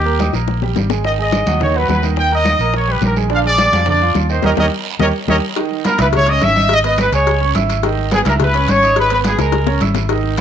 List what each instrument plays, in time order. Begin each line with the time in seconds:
Already playing: fingered electric bass D#2, trumpet section G4
0.05 grand piano A#3 A#4 A#5, high bongo, high conga
0.19 grand piano D#4 D#5 D#6, high bongo, high conga, short guiro
0.33 fingered electric bass A#1, grand piano A#3 A#4 A#5, high bongo, short guiro
0.48 high bongo, high conga, long guiro
0.62 grand piano G3 G4 G5, low bongo, high conga
0.76 fingered electric bass G#1, low bongo, high conga, short guiro
0.90 grand piano G#3 G#4 G#5, low bongo, short guiro
1.04 grand piano D#3 D#4 D#5, trumpet section D#5, high bongo, high conga, long guiro
1.18 grand piano G#3 G#4 G#5, trumpet section D#5, high bongo, high conga
1.32 high bongo, high conga, short guiro
1.46 fingered electric bass D#2, grand piano F#3 F#4 F#5, high bongo, high conga, short guiro
1.60 grand piano D#3 D#4 D#5, trumpet section C#5, high bongo, high conga, low conga, long guiro
1.75 grand piano F#3 F#4 F#5, trumpet section B4, high bongo, high conga
1.88 fingered electric bass D#2, trumpet section B4, high bongo, low bongo, high conga, short guiro
2.02 grand piano D#3 D#4 D#5, high conga, short guiro
2.16 trumpet section G5, high bongo, high conga, long guiro
2.31 grand piano A#3 A#4 A#5, trumpet section D#5, high bongo, high conga
2.45 grand piano D#4 D#5 D#6, high bongo, high conga, short guiro
2.59 fingered electric bass A#1, grand piano A#3 A#4 A#5, high bongo, short guiro
2.74 trumpet section C#5, high bongo, high conga, long guiro
2.88 grand piano G3 G4 G5, trumpet section B4, high bongo, high conga
3.01 fingered electric bass A#1, trumpet section A#4, high bongo, low bongo, high conga, short guiro
3.16 grand piano G#3 G#4 G#5, high conga, short guiro
3.30 grand piano D3 D4 D5, trumpet section F5, high bongo, high conga, long guiro
3.44 grand piano G#3 G#4 G#5, trumpet section D5, high bongo, high conga
3.58 high bongo, high conga, short guiro
3.72 fingered electric bass F2, grand piano F3 F4 F5, high bongo, high conga, short guiro
3.86 grand piano D3 D4 D5, trumpet section D5, high bongo, high conga, low conga, long guiro
4.01 grand piano F3 F4 F5, high bongo, high conga
4.15 fingered electric bass D#2, high bongo, low bongo, high conga, short guiro
4.29 grand piano D#3 D#4 D#5, trumpet section C5, short guiro
4.42 fingered electric bass D#2, grand piano D#4 G4 A#4, trumpet section A#4 C#5 D#5, low bongo, high conga, long guiro
4.57 fingered electric bass D#2, grand piano D#4 G4 A#4, trumpet section A#4 C#5 D#5, low bongo, high conga, long guiro
4.99 fingered electric bass D#2, grand piano D#4 G4 A#4, trumpet section A#4 C#5 D#5, low bongo, high conga, long guiro
5.28 fingered electric bass D#2, grand piano D#4 G4 A#4, trumpet section A#4 C#5 D#5, low bongo, high conga, long guiro
5.56 grand piano D#3 D#4 D#5, cowbell, high conga, long guiro
5.71 high conga
5.85 grand piano B3 B4 B5, trumpet section A#4, cowbell, high conga, short guiro
5.98 fingered electric bass C#2, grand piano E4 E5 E6, trumpet section B4, cowbell, high conga, short guiro
6.13 trumpet section C#5, cowbell, high conga, low conga, long guiro
6.26 grand piano C#4 C#5 C#6, trumpet section D#5, cowbell, high conga
6.41 fingered electric bass G#1, trumpet section E5, cowbell, high conga, short guiro
6.56 grand piano D#4 D#5 D#6, high conga, short guiro
6.69 cowbell, high conga, long guiro
6.73 trumpet section D#5
6.84 grand piano B3 B4 B5, trumpet section D#5, cowbell, high conga
6.98 trumpet section B4, cowbell, high conga, short guiro
7.12 fingered electric bass C#2, grand piano G#3 G#4 G#5, trumpet section C#5, cowbell, short guiro
7.27 cowbell, high conga, long guiro
7.41 grand piano C#4 C#5 C#6, high conga
7.54 fingered electric bass G#1, grand piano E4 E5 E6, cowbell, high conga, short guiro
7.69 cowbell, short guiro
7.83 grand piano D#3 D#4 D#5, cowbell, high conga, long guiro
7.98 high conga
8.11 grand piano B3 B4 B5, trumpet section G#4, cowbell, high conga, short guiro
8.25 fingered electric bass C#2, grand piano E4 E5 E6, trumpet section A#4, cowbell, high conga, short guiro
8.40 trumpet section B4, cowbell, high conga, low conga, long guiro
8.54 grand piano C#4 C#5 C#6, cowbell, high conga
8.68 fingered electric bass G#1, trumpet section C#5, cowbell, high conga, short guiro
8.82 grand piano D#4 D#5 D#6, short guiro
8.96 trumpet section B4, cowbell, high conga, long guiro
9.10 grand piano B3 B4 B5, trumpet section B4, cowbell, high conga
9.24 trumpet section G#4, cowbell, high conga, short guiro
9.38 fingered electric bass C#2, grand piano G#3 G#4 G#5, trumpet section A#4, cowbell, high bongo, short guiro
9.52 cowbell, high bongo, high conga, long guiro
9.67 grand piano C#4 C#5 C#6, low bongo, high conga
9.80 fingered electric bass G#1, grand piano E4 E5 E6, cowbell, high conga, short guiro
9.95 cowbell, low bongo, short guiro
10.09 grand piano D#3 D#4 D#5, cowbell, high conga, long guiro
10.24 high conga
10.37 grand piano B3, cowbell, short guiro